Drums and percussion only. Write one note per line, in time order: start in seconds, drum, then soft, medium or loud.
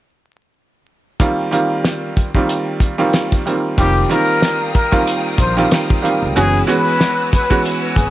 1.20 kick loud
1.20 closed hi-hat medium
1.53 closed hi-hat medium
1.85 snare loud
1.85 closed hi-hat medium
2.17 kick loud
2.17 closed hi-hat medium
2.35 kick medium
2.49 closed hi-hat medium
2.80 kick loud
2.80 closed hi-hat medium
3.13 snare loud
3.13 closed hi-hat medium
3.32 kick loud
3.32 closed hi-hat medium
3.47 closed hi-hat medium
3.78 kick loud
3.78 closed hi-hat loud
4.11 closed hi-hat medium
4.42 snare loud
4.42 closed hi-hat medium
4.42 tambourine medium
4.75 kick loud
4.75 closed hi-hat medium
4.93 kick medium
5.07 closed hi-hat medium
5.38 kick loud
5.38 closed hi-hat medium
5.71 snare loud
5.71 closed hi-hat medium
5.71 tambourine medium
5.90 kick loud
6.05 closed hi-hat medium
6.37 closed hi-hat loud
6.69 closed hi-hat medium
7.01 snare loud
7.01 closed hi-hat medium
7.01 tambourine medium
7.33 kick loud
7.33 snare soft
7.33 closed hi-hat medium
7.51 kick medium
7.65 closed hi-hat medium
7.96 kick loud
7.96 closed hi-hat medium